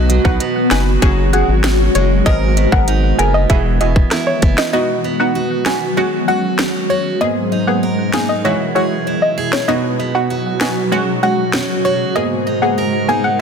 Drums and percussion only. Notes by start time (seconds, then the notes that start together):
0.10 closed hi-hat
0.25 kick
0.40 closed hi-hat
0.71 finger snap, snare, closed hi-hat
1.02 kick, closed hi-hat
1.33 closed hi-hat
1.64 finger snap, snare, closed hi-hat
1.95 closed hi-hat
2.26 kick, closed hi-hat
2.57 closed hi-hat
2.72 kick
2.88 closed hi-hat
3.19 closed hi-hat
3.50 kick, closed hi-hat
3.81 closed hi-hat
3.96 kick
4.11 cross-stick, snare, closed hi-hat
4.42 kick, closed hi-hat
4.58 finger snap, snare
5.66 finger snap, snare
6.59 finger snap, snare
8.13 finger snap, snare
9.53 finger snap, snare
10.61 finger snap, snare
11.53 finger snap, snare